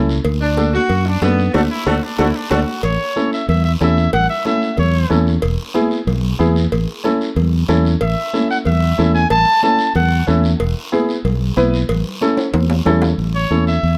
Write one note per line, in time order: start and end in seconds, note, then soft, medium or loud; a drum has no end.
0.00 0.19 C#2 medium
0.00 0.15 C#4 medium
0.00 0.15 E4 medium
0.00 0.16 A4 medium
0.09 short guiro medium
0.25 0.77 D2 loud
0.25 cowbell loud
0.25 long guiro medium
0.41 0.71 D4 medium
0.56 0.79 D4 medium
0.56 0.80 F#4 medium
0.56 0.80 A4 medium
0.56 cowbell medium
0.56 high conga medium
0.56 short guiro medium
0.73 1.04 F#4 loud
0.73 high conga medium
0.73 short guiro medium
0.89 1.16 F#2 medium
0.89 cowbell medium
0.89 long guiro medium
1.06 1.22 D4 loud
1.21 1.48 F#2 medium
1.21 1.52 B3 medium
1.21 1.44 D4 medium
1.21 1.45 F#4 medium
1.21 1.45 A4 medium
1.21 cowbell medium
1.21 high conga medium
1.21 low timbale medium
1.21 short guiro medium
1.39 short guiro medium
1.53 1.67 D2 medium
1.53 1.62 A3 loud
1.53 1.61 D4 loud
1.53 1.65 D4 medium
1.53 1.62 F#4 medium
1.53 1.65 F#4 medium
1.53 1.65 A4 medium
1.53 high conga loud
1.53 high timbale medium
1.53 long guiro loud
1.71 1.89 E4 loud
1.86 1.99 D2 loud
1.86 1.94 A3 loud
1.86 1.97 D4 medium
1.86 1.94 D4 medium
1.86 1.97 F#4 medium
1.86 1.94 F#4 medium
1.86 2.05 F#4 loud
1.86 1.97 A4 medium
1.86 high conga loud
1.86 high timbale medium
1.86 long guiro medium
2.04 2.21 D4 medium
2.18 2.31 D2 medium
2.18 2.26 A3 medium
2.18 2.26 D4 medium
2.18 2.29 D4 medium
2.18 2.38 E4 medium
2.18 2.29 F#4 medium
2.18 2.27 F#4 medium
2.18 2.29 A4 loud
2.18 high conga medium
2.18 high timbale medium
2.18 long guiro medium
2.36 2.53 D4 medium
2.50 2.63 D2 medium
2.50 2.59 A3 medium
2.50 2.61 D4 medium
2.50 2.59 D4 medium
2.50 2.59 F#4 medium
2.50 2.61 F#4 medium
2.50 2.83 F#4 medium
2.50 2.61 A4 medium
2.50 high conga loud
2.50 high timbale loud
2.50 long guiro medium
2.83 2.96 A1 medium
2.83 3.29 C#5 medium
2.83 cowbell loud
2.83 high conga soft
2.83 long guiro medium
3.16 3.39 C#4 medium
3.16 3.39 E4 medium
3.16 3.39 A4 medium
3.16 high conga medium
3.16 short guiro medium
3.33 3.48 E5 medium
3.33 short guiro medium
3.48 3.74 E2 loud
3.48 3.64 E5 medium
3.48 cowbell medium
3.48 high conga soft
3.48 low conga medium
3.48 long guiro medium
3.65 3.72 E5 medium
3.81 4.07 E2 loud
3.81 4.03 C#4 medium
3.81 4.03 E4 medium
3.81 4.04 A4 medium
3.81 4.11 E5 medium
3.81 high conga medium
3.81 low timbale medium
3.81 short guiro medium
3.97 short guiro medium
4.13 4.26 A1 medium
4.13 4.28 F#5 loud
4.13 cowbell loud
4.13 high conga soft
4.13 low conga medium
4.13 long guiro medium
4.30 4.45 E5 loud
4.45 4.68 C#4 medium
4.45 4.68 E4 medium
4.45 4.68 A4 medium
4.45 4.76 E5 medium
4.45 high conga medium
4.45 short guiro medium
4.62 short guiro medium
4.77 5.04 E2 loud
4.77 5.24 C#5 medium
4.77 cowbell medium
4.77 high conga soft
4.77 low conga medium
4.77 long guiro medium
5.10 5.36 E2 loud
5.10 5.33 C#4 medium
5.10 5.33 E4 medium
5.10 5.33 A4 medium
5.10 high conga medium
5.10 short guiro medium
5.27 short guiro medium
5.42 5.56 E1 medium
5.42 cowbell loud
5.42 high conga soft
5.42 long guiro medium
5.74 5.97 B3 medium
5.74 5.97 E4 medium
5.74 5.98 G#4 medium
5.74 high conga medium
5.74 short guiro medium
5.91 short guiro medium
6.07 6.33 B1 loud
6.07 cowbell medium
6.07 high conga soft
6.07 low conga medium
6.07 long guiro medium
6.39 6.65 E2 loud
6.39 6.62 B3 medium
6.39 6.62 E4 medium
6.39 6.62 G#4 medium
6.39 high conga medium
6.39 short guiro medium
6.56 short guiro medium
6.72 6.85 A1 loud
6.72 cowbell loud
6.72 high conga soft
6.72 long guiro medium
7.04 7.27 C#4 medium
7.04 7.27 E4 medium
7.04 7.27 A4 medium
7.04 high conga medium
7.04 short guiro medium
7.21 short guiro medium
7.36 7.62 E2 loud
7.36 cowbell medium
7.36 high conga soft
7.36 low conga medium
7.36 long guiro medium
7.68 7.95 E2 loud
7.68 7.91 C#4 medium
7.68 7.91 E4 medium
7.68 7.92 A4 medium
7.68 high conga medium
7.68 low conga medium
7.68 low timbale medium
7.68 short guiro medium
7.85 short guiro medium
8.01 8.14 A1 medium
8.01 8.47 E5 medium
8.01 cowbell loud
8.01 high conga soft
8.01 long guiro medium
8.33 8.56 C#4 medium
8.33 8.56 E4 medium
8.33 8.56 A4 medium
8.33 high conga medium
8.33 short guiro medium
8.50 8.58 F#5 loud
8.50 short guiro medium
8.65 8.92 E2 loud
8.65 9.11 E5 medium
8.65 cowbell medium
8.65 high conga soft
8.65 low conga medium
8.65 long guiro medium
8.98 9.24 E2 loud
8.98 9.21 C#4 medium
8.98 9.21 E4 medium
8.98 9.21 A4 medium
8.98 high conga medium
8.98 short guiro medium
9.14 9.29 G#5 loud
9.14 short guiro medium
9.30 9.44 A1 loud
9.30 9.61 A5 loud
9.30 cowbell loud
9.30 high conga soft
9.30 low conga medium
9.30 long guiro medium
9.63 9.85 C#4 medium
9.63 9.86 E4 medium
9.63 9.86 A4 medium
9.63 9.93 A5 loud
9.63 high conga medium
9.63 short guiro medium
9.79 short guiro medium
9.95 10.21 E2 loud
9.95 10.29 F#5 loud
9.95 cowbell medium
9.95 high conga soft
9.95 low conga medium
9.95 long guiro medium
10.27 10.54 E2 loud
10.27 10.50 C#4 medium
10.27 10.50 E4 medium
10.27 10.50 A4 medium
10.27 10.52 E5 medium
10.27 high conga medium
10.27 short guiro medium
10.44 short guiro medium
10.60 10.73 E1 loud
10.60 cowbell loud
10.60 high conga soft
10.60 long guiro medium
10.92 11.15 B3 medium
10.92 11.15 E4 medium
10.92 11.15 G#4 medium
10.92 high conga medium
10.92 short guiro medium
11.09 short guiro medium
11.25 11.50 B1 loud
11.25 cowbell medium
11.25 high conga soft
11.25 low conga medium
11.25 long guiro medium
11.57 11.83 B1 loud
11.57 11.79 B3 medium
11.57 11.80 E4 medium
11.57 11.80 B4 loud
11.57 high conga medium
11.57 short guiro medium
11.74 short guiro medium
11.89 12.02 A1 medium
11.89 cowbell loud
11.89 high conga soft
11.89 low conga medium
11.89 long guiro medium
12.21 12.44 C#4 medium
12.21 12.44 E4 medium
12.21 12.44 A4 loud
12.21 high conga medium
12.21 short guiro medium
12.37 high timbale medium
12.37 short guiro medium
12.54 12.80 E2 loud
12.54 cowbell medium
12.54 high conga medium
12.54 high timbale medium
12.54 long guiro medium
12.64 high conga medium
12.70 low timbale medium
12.85 13.12 E2 loud
12.85 13.09 C#4 medium
12.85 13.09 E4 medium
12.85 13.09 A4 loud
12.85 low conga loud
12.85 low timbale medium
12.85 short guiro medium
13.02 low timbale loud
13.02 short guiro medium
13.07 low conga medium
13.18 13.44 A1 medium
13.18 long guiro medium
13.35 13.65 C#5 loud
13.50 13.77 E2 medium
13.50 13.73 C#4 medium
13.50 13.74 E4 medium
13.50 13.74 A4 medium
13.50 high conga medium
13.50 short guiro medium
13.67 13.97 E5 loud
13.67 short guiro medium
13.83 13.98 E2 loud
13.83 long guiro medium